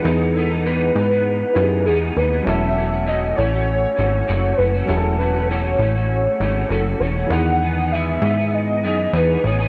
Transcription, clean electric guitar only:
\new Staff \with { instrumentName = "Clean electric guitar" } { \time 4/4 \key e \major \tempo 4 = 99 <e gis b dis'>8 <e gis b dis'>16 <gis b dis'>16 <e gis b dis'>8 <e gis b dis'>16 <gis b dis'>8. <e gis b dis'>8 <e gis b dis'>8 <e gis b dis'>16 <gis b dis'>16 | <e a cis' fis'>8 <e a cis' fis'>16 <a cis' fis'>16 <e a cis' fis'>8 <e a cis' fis'>16 <a cis' fis'>8. <e a cis' fis'>8 <e a cis' fis'>8 <e a cis' fis'>16 <a cis' fis'>16 | <e a cis' fis'>8 <e a cis' fis'>16 <a cis' fis'>16 <e a cis' fis'>8 <e a cis' fis'>16 <a cis' fis'>8. <e a cis' fis'>8 <e a cis' fis'>8 <e a cis' fis'>16 <a cis' fis'>16 | <e gis b dis' gis'>8 <gis b dis' gis'>16 <b dis' gis'>16 <e gis b gis'>8 <gis b dis' gis'>16 <b dis' gis'>8. <gis b dis' gis'>8 <e gis b dis' gis'>8 <gis b dis' gis'>16 <b dis' gis'>16 | }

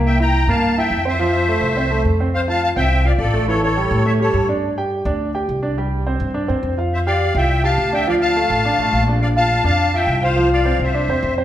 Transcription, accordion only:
\new Staff \with { instrumentName = "Accordion" } { \time 4/4 \key f \major \tempo 4 = 209 <e'' g''>8 <g'' bes''>4 <f'' a''>4 <e'' g''>4 <c'' e''>8~ | <c'' e''>2. r4 | <c'' f''>8 <f'' a''>8 <f'' a''>8 <e'' g''>4 <d'' f''>8 <a' d''>4 | <a' cis''>8 <a' cis''>4. <cis'' e''>8 <a' cis''>4 r8 |
r1 | r1 | <c'' e''>8 <d'' f''>4 <e'' g''>4 <f'' a''>4 <e'' g''>8 | <d'' f''>8 <f'' a''>2. r8 |
<d'' f''>8 <f'' a''>4 <f'' a''>4 <e'' g''>4 <c'' f''>8~ | <c'' f''>8 <d'' f''>4 <c'' e''>2 r8 | }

